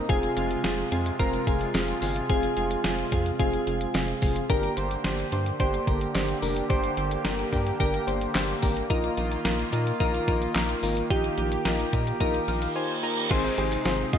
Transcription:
Already playing: C3
0.09 F1 G#3 C4 F4 G#4, kick, closed hi-hat
0.23 closed hi-hat
0.37 F1 C4 F4 G#4, closed hi-hat
0.51 closed hi-hat
0.64 F1 C4 F4 G#4, snare, closed hi-hat
0.78 closed hi-hat
0.92 F2 C4 F4 G#4, closed hi-hat
1.06 closed hi-hat
1.19 F1 C4 F4 A#4, kick, closed hi-hat
1.33 closed hi-hat
1.47 F1 C4 F4 G#4, kick, closed hi-hat
1.61 closed hi-hat
1.74 F1 C4 F4 G#4, snare, closed hi-hat
1.88 closed hi-hat
2.02 G1 C4 F4 G#4, open hi-hat
2.16 closed hi-hat
2.29 F1 C4 F4 G#4, kick, closed hi-hat
2.43 closed hi-hat
2.57 F1 C4 F4 G#4, closed hi-hat
2.71 closed hi-hat
2.84 F1 C4 F4 G#4, snare, closed hi-hat
2.99 closed hi-hat
3.12 F2 C4 F4 G#4, kick, closed hi-hat
3.26 closed hi-hat
3.39 F1 C4 F4 G#4, kick, closed hi-hat
3.53 closed hi-hat
3.67 F1 C4 F4 G#4, closed hi-hat
3.81 closed hi-hat
3.94 F1 C4 F4 G#4, snare, closed hi-hat
4.08 closed hi-hat
4.22 F1 C4 F4 G#4, kick, open hi-hat
4.36 closed hi-hat
4.50 G1 D3 A#3 D4 G4 A#4, kick, closed hi-hat
4.63 closed hi-hat
4.77 G1 D4 G4 C5, closed hi-hat
4.91 closed hi-hat
5.04 G1 D4 G4 C5, snare, closed hi-hat
5.19 closed hi-hat
5.32 G2 D4 G4 C5, closed hi-hat
5.46 closed hi-hat
5.60 G1 D4 G4 C5, kick, closed hi-hat
5.74 closed hi-hat
5.87 G1 D4 G4 A#4, kick, closed hi-hat
6.01 closed hi-hat
6.15 G1 D4 G4 C5, snare, closed hi-hat
6.29 closed hi-hat
6.42 F1 D4 G4 A#4, open hi-hat
6.56 closed hi-hat
6.70 G1 D4 G4 C5, kick, closed hi-hat
6.84 closed hi-hat
6.97 G1 D4 G4 C5, closed hi-hat
7.11 closed hi-hat
7.25 G1 D4 G4 A#4, snare, closed hi-hat
7.39 closed hi-hat
7.52 G2 D4 G4 A#4, kick, closed hi-hat
7.67 closed hi-hat
7.80 G1 D4 G4 A#4, kick, closed hi-hat
7.94 closed hi-hat
8.07 G1 D4 G4 C5, closed hi-hat
8.21 closed hi-hat
8.35 G1 D4 G4 C5, snare, clap, closed hi-hat
8.49 closed hi-hat
8.62 G#1 D4 G4 A#4, kick, open hi-hat
8.77 closed hi-hat
8.90 A#1 D#3 D#4 F4 A#4, kick, closed hi-hat
9.04 closed hi-hat
9.17 A#1 D#4 F4 A#4, closed hi-hat
9.31 closed hi-hat
9.45 A#1 D#4 F4 A#4, snare, closed hi-hat
9.59 closed hi-hat
9.72 A#2 D#4 F4 A#4, closed hi-hat
9.87 closed hi-hat
10.00 A#1 D#4 F4 A#4, kick, closed hi-hat
10.14 closed hi-hat
10.28 A#1 D#4 F4 A#4, kick, closed hi-hat
10.42 closed hi-hat
10.55 A#1 D#4 F4 A#4, snare, clap, closed hi-hat
10.69 closed hi-hat
10.83 G#1 D#4 F4 A#4, open hi-hat
10.97 closed hi-hat
11.10 A#1 D#4 F4 G4, kick, closed hi-hat
11.24 closed hi-hat
11.38 A#1 D#4 F4 G4, closed hi-hat
11.52 closed hi-hat
11.65 A#1 D#4 F4 A#4, snare, closed hi-hat
11.80 closed hi-hat
11.93 A#2 D#4 F4 A#4, kick, closed hi-hat
12.07 closed hi-hat
12.20 A#1 D#4 F4 A#4, kick, closed hi-hat, reverse cymbal
12.34 closed hi-hat
12.48 A#1 D#4 F4 A#4 F5, closed hi-hat
12.62 closed hi-hat
12.76 D#4 F4 C5 G#5
13.03 D#4 F4 A#4 A#5
13.31 G#1 C3 G#3 C4 D#4 F4 G#4 C5, kick, closed hi-hat, crash
13.44 D#4
13.58 G#1 C4 D#4 G4 G#4 C5, closed hi-hat
13.72 closed hi-hat
13.85 G#1 C4 D#4 F4 G#4 C5, snare, closed hi-hat
14.13 A#1 C4 D#4 F4 G#4 D#5, kick, closed hi-hat

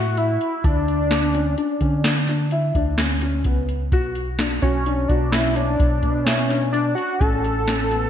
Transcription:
Already playing: A2 E4 F#4
0.17 E4, closed hi-hat
0.41 closed hi-hat
0.64 D2 D4, kick, closed hi-hat
0.88 closed hi-hat
1.11 D4, snare, closed hi-hat
1.34 C#4, closed hi-hat
1.58 D4, closed hi-hat
1.81 D3 C#4, kick, closed hi-hat
2.04 D4, snare, closed hi-hat
2.28 D4, snare, closed hi-hat
2.51 E4, closed hi-hat
2.75 D2 D4, kick, closed hi-hat
2.98 C#4, snare, closed hi-hat
3.21 C#4, closed hi-hat
3.44 C#2 B3, kick, closed hi-hat
3.69 closed hi-hat
3.92 B1 F#4, kick, closed hi-hat
4.15 closed hi-hat
4.39 D4, snare, closed hi-hat
4.62 B1 C#4 F#4, kick, closed hi-hat
4.86 D4, closed hi-hat
5.08 B1 D4 F#4, kick, closed hi-hat
5.32 C#4 E4, snare, closed hi-hat
5.55 D4 C#5, closed hi-hat
5.79 B1, kick, closed hi-hat
6.03 B2, kick, closed hi-hat
6.25 C#4 E4, snare, closed hi-hat
6.50 D4, snare, closed hi-hat
6.72 D4, closed hi-hat
6.95 F#4, closed hi-hat
7.19 A1 C#4 A4, kick, closed hi-hat
7.44 closed hi-hat
7.68 C#4, snare, closed hi-hat
7.91 B3, closed hi-hat

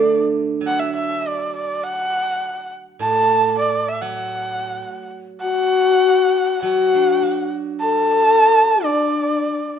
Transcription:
Already playing: D3 A3 D4 D5
0.61 F#3
0.67 F#5
0.79 E5
0.96 E5
1.27 D5
1.57 D5
1.84 F#5
2.99 A2 A5
3.59 D5
3.88 E5
4.01 F#3 F#5
5.41 F#4 F#5
6.62 F#3 F#4 F#5
6.94 D4
7.22 F#4
7.80 A4 A5
8.84 D4 D5

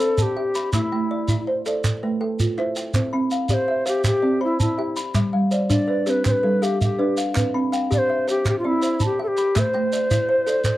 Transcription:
Already playing: C4 A4 D5
0.00 C5 B5
0.17 A4 A5, shekere
0.22 G4
0.36 G4 E5 G5
0.55 B5, clap, shekere
0.73 A3 E4, clap, shekere
0.92 A3 G5
1.11 D5
1.28 E4, clap, shekere
1.47 C5
1.66 A4 D5, clap, shekere
1.84 clap, shekere
2.03 A3 B4
2.21 A4 G5
2.40 F4, clap, shekere
2.58 E4 C5 E5, clap
2.76 G5, clap, shekere
2.94 C4 C5, clap, shekere
3.13 C4 B5
3.31 F5, shekere
3.49 G4 D5, shekere
3.54 C5
3.68 E5
3.86 G4 C5 F5, clap, shekere
4.04 G4, clap, shekere
4.22 C4 D5
4.41 E4 C5 B5
4.59 E4 A5, shekere
4.78 G4 E5 G5
4.96 B5, clap, shekere
5.14 G3 E5, clap, shekere
5.33 G3 F5
5.51 C5 D5, shekere
5.70 D4 D5, shekere
5.88 B4
6.06 C4 G4 B4, clap, shekere
6.25 C5, clap, shekere
6.31 B4
6.43 G3 A4
6.62 G4 F5, shekere
6.81 G4 E5, shekere
6.99 D4 B4 D5
7.17 F5, clap, shekere
7.35 C4 B4, clap, shekere
7.54 C4 B5
7.72 F5 G5, shekere
7.91 G4 D5, shekere
7.98 C5
8.10 E5
8.28 G4 C5, clap, shekere
8.45 G4, clap, shekere
8.59 F4
8.64 C4 E4 D5
8.82 C5 B5, shekere
9.00 A5, shekere
9.05 G4
9.19 G4 A4 E5 G5
9.28 G4
9.37 B5, clap, shekere
9.56 A3 C5 E5, clap, shekere
9.74 A3 G5, clap
9.92 D5 E5, shekere
10.11 E4, shekere
10.29 C5
10.47 A4 D5, clap, shekere
10.64 clap, shekere

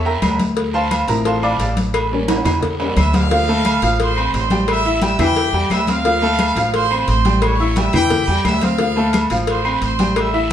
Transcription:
Already playing: E2
0.05 A#4 E5 G5 A#5, high conga, low agogo
0.22 D2, cowbell, high conga, low timbale, low agogo, short guiro, claves
0.39 cowbell, high conga, short guiro
0.57 cowbell, high conga, long guiro
0.74 C5 F5 A5 C6, high conga, low agogo
0.91 cowbell, high conga, low agogo, short guiro, claves
1.08 A1 F3 C4 E4 A#4 A#5, cowbell, high conga, short guiro
1.25 C5 F5 A5 C6, cowbell, high conga, low agogo, long guiro
1.42 D5 F5 A5 D6, high conga, low agogo, claves
1.59 A1, cowbell, high conga, low timbale, short guiro
1.77 cowbell, high conga, short guiro
1.94 cowbell, high conga, low agogo, long guiro, claves
2.11 G3 A#3 C#4, high conga
2.28 cowbell, high conga, high timbale, low agogo, short guiro
2.45 E2, cowbell, high conga, low conga, high timbale, low agogo, short guiro, claves
2.62 cowbell, high conga, low conga, long guiro
2.79 G3 A#3 C#4, high conga, low timbale, low agogo
2.96 D2 E5 E6, cowbell, high conga, low agogo, short guiro, claves
3.13 F5, cowbell, high conga, low timbale, short guiro
3.31 F3 F4 F5, cowbell, high conga, long guiro
3.48 A3 A4 A5, high conga, low agogo
3.65 cowbell, high conga, low agogo, short guiro, claves
3.82 A1 F3 F4 F5, cowbell, high conga, short guiro
3.99 C5 C6, cowbell, high conga, low agogo, long guiro
4.17 C4 C5 C6, high conga, low agogo, claves
4.33 A1 C5 C6, cowbell, high conga, low timbale, short guiro
4.50 G3 G4 G5, cowbell, high conga, short guiro
4.68 E5 E6, cowbell, high conga, low agogo, long guiro, claves
4.85 E4 E5 E6, high conga
5.02 G3 G4 E5 G5 E6, cowbell, high conga, low agogo, short guiro
5.19 E2 E3 E4 G4 E5 G5, cowbell, high conga, low conga, low agogo, short guiro, claves
5.36 cowbell, high conga, long guiro
5.53 E2 G3 G4 G5, high conga, low agogo
5.70 D2 E5 E6, cowbell, high conga, low timbale, low agogo, short guiro, claves
5.87 C4 C5 F5 C6, cowbell, high conga, short guiro
6.04 F3 F4 F5, cowbell, high conga, long guiro
6.22 A3 A4 A5, high conga, low agogo
6.39 cowbell, high conga, low agogo, short guiro, claves
6.56 A1 F3 F4 F5, cowbell, high conga, short guiro
6.73 C5 C6, cowbell, high conga, low agogo, long guiro
6.91 C4 C5 C6, high conga, low agogo, claves
7.08 A1 C5 C6, cowbell, high conga, short guiro
7.25 G3 G4 G5, cowbell, high conga, short guiro
7.42 C#5 C#6, cowbell, high conga, low agogo, long guiro, claves
7.60 E4 E5 E6, high conga
7.76 G3 G4 E5 G5 E6, cowbell, high conga, low agogo, short guiro
7.93 E2 E3 E4 G4 E5 G5, cowbell, high conga, low conga, low agogo, short guiro, claves
8.10 cowbell, high conga, low conga, long guiro
8.27 E2 G3 G4 G5, high conga, low agogo
8.45 D2 E5 E6, cowbell, high conga, low timbale, low agogo, short guiro, claves
8.61 C4 C5 F5 C6, cowbell, high conga, short guiro
8.78 F3 F4 F5, cowbell, high conga, long guiro
8.96 A3 A4 A5, high conga, low agogo
9.13 cowbell, high conga, low agogo, short guiro, claves
9.30 A1 F3 F4 F5, cowbell, high conga, short guiro
9.47 C5 C6, cowbell, high conga, low agogo, long guiro
9.65 C4 C5 C6, high conga, low agogo, claves
9.81 A1 C5 C6, cowbell, high conga, short guiro
9.99 G3 G4 G5, cowbell, high conga, short guiro
10.16 E5 E6, cowbell, low agogo, long guiro, claves
10.33 E4 E5 E6, high conga

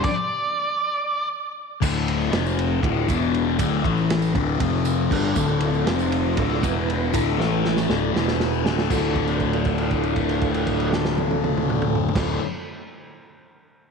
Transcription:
0.04 D5, kick, crash
1.81 D1 D2 A2 D3, kick, crash, tambourine
2.08 ride
2.21 tambourine
2.31 F1 F2 C3 F3, snare, ride
2.46 tambourine
2.59 ride
2.82 D1 D2 A2 D3, kick, ride
3.08 E1 E2 B2 E3, kick, ride, tambourine
3.34 ride
3.58 D1 D2 A2 D3, kick, ride, tambourine
3.83 A1 A2 E3 A3, kick, ride
3.97 tambourine
4.10 snare, ride
4.22 tambourine
4.34 D1 D2 A2 D3, kick, ride
4.59 F1 F2 C3 F3, kick, ride
4.85 ride, tambourine
5.11 G1 G2 D3 G3, kick, crash
5.36 D1 D2 A2 D3 A3 D4 F4 A4, kick, tambourine
5.61 ride
5.74 tambourine
5.86 F1 F2 C3 F3 C4 C5, snare, ride
5.99 tambourine
6.12 ride
6.37 D1 D2 A2 D3 A3 D4 A4, kick, ride
6.61 E1 E2 B2 E3 B3 E4 B4, kick, ride, tambourine
6.90 ride
7.11 D1 D2 A2 D3 A3 D4 F4 A4, kick, ride, tambourine
7.36 A1 A2 E3 A3 E4
7.40 snare
7.65 snare
7.77 snare, tambourine
7.86 D1 D2 A2 D3 D4 F4, snare
8.11 E1 E2 B2 E3 B3 E4 B4
8.16 snare
8.28 snare, tambourine
8.40 snare
8.53 tambourine
8.64 D1 D2 A2 D3 A3 D4 F4 A4, snare
8.78 snare
8.90 D1 D2 A2 A3 D4 F4 A4, kick, crash, tambourine
8.94 D3
9.16 kick, crash
9.28 crash
9.40 kick, crash
9.53 crash
9.65 kick, crash
9.78 crash
9.91 kick, crash
10.03 crash
10.16 kick, crash
10.29 crash
10.41 kick, crash
10.54 crash
10.67 kick, crash
10.80 crash
10.93 snare
11.05 snare
11.18 high tom
11.31 high tom
11.44 mid tom
11.57 mid tom
11.70 mid tom
11.82 mid tom
11.95 floor tom
12.09 floor tom
12.14 D1 D2 A2 A3 D4 F4 A4, kick, snare, crash
12.18 D3

